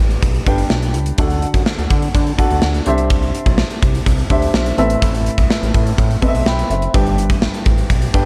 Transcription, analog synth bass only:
0.00 A1
0.23 B1
0.47 G1
0.71 B1
0.94 C#2
1.18 D2
1.54 F#2
1.78 D2
1.90 D3
2.15 D3
2.51 D2
2.63 D2
2.87 C2
3.46 B1
3.82 C2
4.06 C2
4.30 D2
4.54 B1
4.78 A1
5.02 A1
5.38 C2
5.62 A1
5.75 A2
5.98 A2
6.34 B1
6.46 B1
6.70 F#1
6.95 G1
7.30 A1
7.66 A1
7.90 B1
8.14 G1

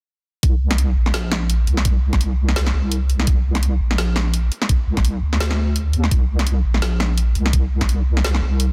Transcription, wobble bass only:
0.43 C2
0.96 A#1
1.67 C2
2.74 C2
3.27 C2
3.80 A#1
4.87 C2
5.23 D2
5.93 D#2
6.11 C2
6.65 A#1
7.36 C2
8.42 C2

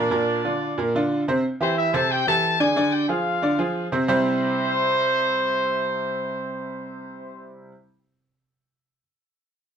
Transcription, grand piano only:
0.11 A#2 A#3 A#4
0.44 D3 D4 F4
0.78 A#2 A#3 A#4
0.95 D3 D4 F4
1.28 C3 C4 C5
1.61 E3 E4 G4
1.94 C3 C4 C5
2.27 E3 E4 G4
2.60 D3 D4 D5
2.76 D3 D4 D5
3.09 F3 F4 G#4
3.42 D3 D4 D5
3.58 F3 F4 G#4
3.92 C3 C4 C5
4.08 C3 G3 C4 E4 G4 C5

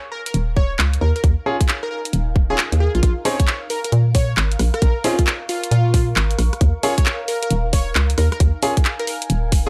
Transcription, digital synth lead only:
0.12 A#4
0.26 A#4
0.56 C#5
1.01 A#4
1.16 A#4
1.83 A#4
1.91 A#4
2.50 G#4
2.80 G#4
2.95 F4
3.03 F4
3.25 C#5
3.70 A#4
3.85 A#4
4.15 C#5
4.74 A#4
5.04 F4
5.49 F4
5.71 F4
6.83 C#5
7.28 A#4
7.43 A#4
7.73 C#5
8.18 A#4
8.32 A#4
8.99 A#4
9.07 A#4

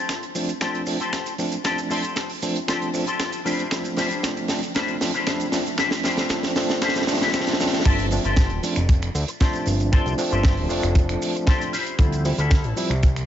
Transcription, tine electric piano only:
0.35 F3 A3 C4 D4
0.61 F3 A3 C4 D4
0.87 F3 A3 C4 D4
1.38 F3 A3 C4 D4
1.64 F3 A3 C4 D4
1.90 F3 A3 C4 D4
2.42 F3 A3 C4 D4
2.68 F3 A3 C4 D4
2.93 F3 A3 C4 D4
3.45 F3 A3 C4 D4
3.71 F3 A3 C4 D4
3.97 F3 A3 C4 D4
4.23 F3 A3 C4 D4
4.49 F3 A3 C4 D4
4.75 F3 A3 C4 D4
5.00 F3 A3 C4 D4
5.27 F3 A3 C4 D4
5.52 F3 A3 C4 D4
5.78 F3 A3 C4 D4
6.04 F3 A3 C4 D4
6.30 F3 A3 C4 D4
6.56 F3 A3 C4 D4
6.82 F3 A3 C4 D4
7.07 F3 A3 C4 D4
7.33 F3 A3 C4 D4
7.59 F3 A3 C4 D4
7.85 F3 A3 D4
8.11 F3 A3 C4 D4
8.63 F3 A3 C4 D4
9.40 F3 A3 C4 D4
9.92 F3 A3 C4 D4
10.18 F3 A3 C4 D4
10.69 F3 A3 C4 D4
11.99 F3 G3 C4 E4
12.25 F3 G3 C4 E4
12.76 F3 G3 C4 E4

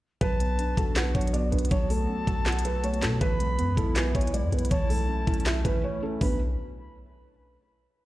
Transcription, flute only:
0.21 A5
0.96 F#5
1.15 F#5
1.71 A5
3.21 B5
3.96 G#5
4.15 G#5
4.71 A5
6.21 B5

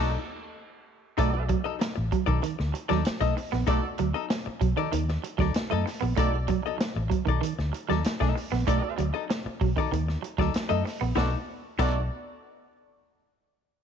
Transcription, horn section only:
1.18 F#4 A4 D5
3.68 F#4 A4 D5
6.17 F#4 A4 D5
8.67 F#4 A4 D5
11.16 A3 F#4 D5
11.79 A3 F#4 D5

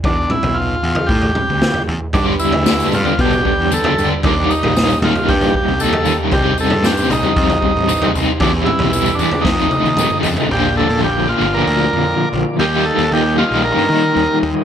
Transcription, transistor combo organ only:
0.05 D4
0.31 E4
0.54 F4
1.07 G4
2.14 D4
2.40 E4
2.94 F4
3.21 G4
3.46 G4
3.74 A4
4.25 D4
4.50 D#4
5.03 F4
5.29 G4
5.56 G4
5.81 A4
6.33 G4
6.61 A4
6.86 G4
7.11 D#4
8.41 D4
8.65 E4
8.90 E4
9.15 D4
9.42 D#4
10.52 G4
10.77 A4
11.04 G4
11.29 F4
11.54 A#4
12.59 G4
12.85 A4
13.13 G4
13.38 F4
13.65 A#4

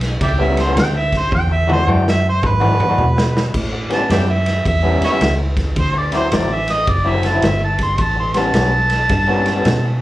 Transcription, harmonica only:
0.23 D5 E5 G5
0.42 E5
0.60 C5
0.79 G5
0.97 E5
1.17 C5
1.35 G5
1.53 E5
1.72 C5
1.91 G5
2.09 E5
2.29 C5
2.46 B4
3.94 A5
4.12 D5 E5 G5
4.31 E5
4.67 E5
5.05 B4 C#5 E5
5.79 C5
5.98 D5
6.16 C5
6.34 D5
6.53 E5
6.71 D#5
6.89 D5
7.08 E5
7.27 A5
7.45 E5
7.64 A5
7.83 C6
8.02 A5
8.19 C6
8.38 A5

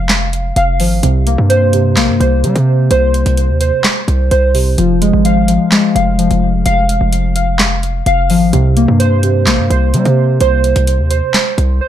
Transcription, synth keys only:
Already playing: F5
0.57 F5
0.80 F3
1.03 C3
1.27 A#3
1.49 C5
1.73 C3
1.97 A#3
2.21 C5
2.43 C3
2.91 C5
3.61 C5
4.31 C5
4.54 C3
4.78 F3
5.01 G#3
5.25 F5
5.49 F3
5.72 G#3
5.95 F5
6.18 F3
6.66 F5
7.36 F5
8.07 F5
8.30 F3
8.53 C3
8.77 A#3
8.99 C5
9.23 C3
9.47 A#3
9.71 C5
9.93 C3
10.41 C5
11.11 C5
11.81 C5

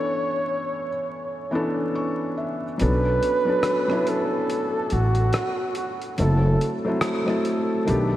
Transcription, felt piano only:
Already playing: E3 B3 C#4 D4 A4
1.51 E3 B3 C#4 D4
1.55 A4
1.95 C#6
2.37 E5
2.78 F#3 B3 C#4 D4
2.82 A4
3.45 F#3 B3 C#4 D4
3.49 A4
3.88 F#3 B3 C#4 D4
3.92 E4
6.18 F#3 A3 C4 E4
6.22 A4
6.85 F#3 A3 C4 E4
6.89 A4
7.25 F#3 A3 C4 E4
7.29 A4
7.85 D#3 A3 B3 D4
7.89 G4

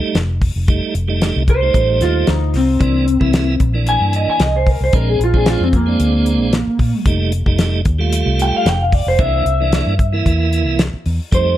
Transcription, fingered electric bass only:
0.15 F1
0.56 F1
0.95 F1
1.36 C2
1.74 A1
2.01 D#2
2.28 D2
2.54 C2
2.80 C2
3.21 C2
3.60 A#1
4.01 G2
4.27 muted fingered electric bass stroke
4.40 C2
4.81 C2
4.93 A#1
5.19 A#1
5.60 F2
5.99 D2
6.40 A#1
6.67 muted fingered electric bass stroke
6.79 A#2
7.05 F1
7.46 F1
7.86 D#2
8.26 C2
8.65 F1
9.06 F1
9.19 C2
9.45 C2
9.87 G2
10.26 E2
10.66 C2
10.93 muted fingered electric bass stroke
11.06 E2
11.32 F2

